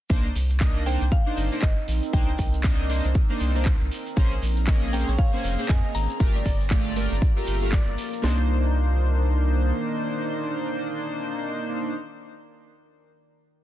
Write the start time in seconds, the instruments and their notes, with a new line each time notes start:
0.10 analog synth bass C2, analog polysynth A#3 D4 D#4 C5, ambient pad C4 D#4 A#4, kick, shaker
0.25 closed hi-hat
0.35 analog synth bass C2, open hi-hat, shaker
0.50 closed hi-hat, shaker
0.60 analog polysynth A#3 D4 D#4 D#5, kick, clap, shaker
0.86 analog polysynth A#3 D4 D#4 C5, synth pluck G5, open hi-hat, shaker
1.01 analog synth bass C2, closed hi-hat, shaker
1.12 synth pluck F5, kick, shaker
1.26 analog polysynth A#3 D4 D#4 C5
1.37 analog synth bass G1, open hi-hat, shaker
1.52 analog polysynth A#3 D4 D#4 C5, closed hi-hat, shaker
1.62 analog synth bass G1, synth pluck D#5, kick, clap, shaker
1.78 closed hi-hat
1.88 analog synth bass A#1, open hi-hat, shaker
2.03 closed hi-hat, shaker
2.13 analog synth bass C2, analog polysynth A#3 D4 D#4 C5, synth pluck G5, kick, shaker
2.28 closed hi-hat
2.38 analog synth bass C2, kick, open hi-hat, shaker
2.54 closed hi-hat, shaker
2.64 analog polysynth A#3 D4 D#4 D#5, kick, clap, shaker
2.89 analog polysynth A#3 D4 D#4 C5, open hi-hat, shaker
3.04 analog synth bass C2, closed hi-hat, shaker
3.14 kick, shaker
3.30 analog polysynth A#3 D4 D#4 C5
3.40 analog synth bass C2, open hi-hat, shaker
3.55 analog polysynth A#3 D4 D#4 C5, closed hi-hat, shaker
3.65 kick, clap, shaker
3.81 analog synth bass C2, closed hi-hat
3.91 open hi-hat, shaker
4.06 closed hi-hat, shaker
4.16 analog synth bass A#1, analog polysynth A#3 C#4 G#4 C5, string machine A#3 A#5, ambient pad C4 C#4 G#4, kick, shaker
4.32 closed hi-hat
4.42 analog synth bass A#1, open hi-hat, shaker
4.57 closed hi-hat, shaker
4.67 analog polysynth A#3 C#4 G#4 D#5, kick, clap, shaker
4.93 analog polysynth A#3 C#4 G#4 C5, digital synth lead A#4, synth pluck G5, open hi-hat, shaker
5.08 analog synth bass A#1, digital synth lead C#5, closed hi-hat, shaker
5.18 digital synth lead C#5, synth pluck F5, kick, shaker
5.33 analog polysynth A#3 C#4 G#4 C5
5.44 analog synth bass F1, digital synth lead F5, open hi-hat, shaker
5.58 analog polysynth A#3 C#4 G#4 C5, digital synth lead F5, closed hi-hat, shaker
5.69 analog synth bass F2, digital synth lead D#5, synth pluck G#5, kick, clap, shaker
5.84 digital synth lead D#5, closed hi-hat
5.95 analog synth bass G#1, synth pluck A#5, open hi-hat, shaker
6.10 closed hi-hat, shaker
6.20 analog synth bass G1, analog polysynth A3 F4 G4 A#4, ambient pad A#3 F4 A#4, kick, shaker
6.35 digital synth lead D5, closed hi-hat
6.45 analog synth bass G1, kick, open hi-hat, shaker
6.61 closed hi-hat, shaker
6.70 analog polysynth A3 F4 G4 D5, kick, clap, shaker
6.96 analog polysynth A3 F4 G4 A#4, digital synth lead D5, open hi-hat, shaker
7.11 analog synth bass G1, closed hi-hat, shaker
7.22 kick, shaker
7.36 analog polysynth A3 F4 G4 A#4, closed hi-hat
7.47 analog synth bass G1, open hi-hat, shaker
7.62 analog polysynth A3 F4 G4 A#4, closed hi-hat, shaker
7.72 digital synth lead D5, kick, clap, shaker
7.88 analog synth bass G1, digital synth lead D5, closed hi-hat
7.98 digital synth lead D5, open hi-hat, shaker
8.13 closed hi-hat, shaker
8.22 analog synth bass C2, ambient pad D#3 A#4 D5, analog polysynth A#3 D4 D#4 C5, synth pluck C6, snare